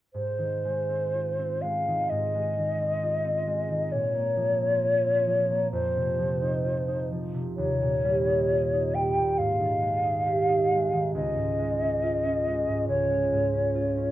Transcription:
0.13 harp G#2, flute C5
0.38 harp D#3
0.65 harp G#3
0.89 harp C4
1.14 harp F4
1.39 harp C4
1.61 harp G#3, flute F5
1.88 harp D#3
2.10 harp G#2, flute D#5
2.35 harp G#3
2.57 harp D#3
2.81 harp C4
3.03 harp F4
3.25 harp C4
3.47 harp G#3
3.70 harp D#3
3.92 harp A#2, flute C#5
4.14 harp A#3
4.37 harp F3
4.61 harp C4
4.83 harp F4
5.04 harp C4
5.27 harp F3
5.50 harp A#3
5.72 harp F2, flute C5
5.96 harp C3
6.19 harp F3
6.42 harp D#4
6.64 harp F4
6.88 harp D#4
7.12 harp F3
7.34 harp C3
7.57 harp D#2, flute C#5
7.81 harp A#2
8.05 harp G3
8.27 harp D#4
8.50 harp F4
8.73 harp D#4
8.94 harp G3, flute G5
9.18 harp A#2
9.38 harp G#2, flute F5
9.60 harp D#3
9.82 harp G#3
10.04 harp D#4
10.26 harp G4
10.49 harp D#4
10.71 harp G#3
10.93 harp D#3
11.15 harp C#2, flute D#5
11.36 harp G#2
11.59 harp G#3
11.81 harp C#4
12.03 harp F4
12.25 harp C#4
12.47 harp G#3
12.67 harp G#2
12.88 harp C#2, flute C#5
13.10 harp G#3
13.32 harp G#2
13.54 harp C#4
13.75 harp F4
13.97 harp C#4

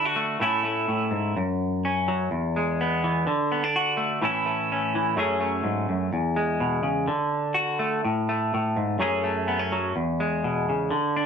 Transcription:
Already playing: clean electric guitar D3 D4
0.05 clean electric guitar F#4
0.16 clean electric guitar A3
0.40 clean electric guitar A2 A3 C#4 E4, muted clean electric guitar stroke
0.65 clean electric guitar A3
0.88 clean electric guitar A2
1.11 clean electric guitar G#2
1.37 clean electric guitar F#2
1.85 clean electric guitar C#4
2.08 clean electric guitar F#3
2.31 clean electric guitar E2
2.56 clean electric guitar G#3
2.81 clean electric guitar B3
3.04 clean electric guitar E3
3.27 clean electric guitar D3
3.52 clean electric guitar B3
3.64 clean electric guitar D4
3.76 clean electric guitar F#4
3.97 clean electric guitar A3
4.22 clean electric guitar A2 E3 A3 C#4 E4
4.46 clean electric guitar A3
4.72 clean electric guitar C#4
4.95 clean electric guitar E3
5.16 clean electric guitar F#2 F#3 A3 C#4 G#4
5.41 clean electric guitar A3
5.64 clean electric guitar G#2
5.89 clean electric guitar F#2
6.13 clean electric guitar E2
6.36 clean electric guitar G#3
6.60 clean electric guitar B2
6.83 clean electric guitar C#3
7.08 clean electric guitar D3
7.54 clean electric guitar F#4
7.79 clean electric guitar A3
8.05 clean electric guitar A2
8.29 clean electric guitar A3
8.54 clean electric guitar A2
8.76 clean electric guitar G#2
8.99 clean electric guitar F#2 F#3 A3 C#4 G#4
9.24 clean electric guitar A3
9.48 clean electric guitar B3
9.59 clean electric guitar C#4
9.72 clean electric guitar F#3
9.96 clean electric guitar E2
10.20 clean electric guitar G#3
10.44 clean electric guitar B2
10.69 clean electric guitar C#3
10.91 clean electric guitar D3
11.16 clean electric guitar D4

